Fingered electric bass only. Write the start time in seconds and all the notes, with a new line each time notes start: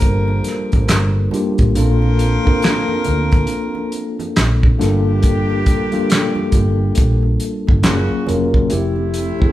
0.03 G1
0.74 A1
0.91 G1
1.60 A1
1.78 A#1
3.08 D2
4.38 A#1
4.82 G1
6.53 G1
6.99 A#1
7.70 G1
7.86 F#1
8.13 muted fingered electric bass stroke
8.30 F1
8.73 F1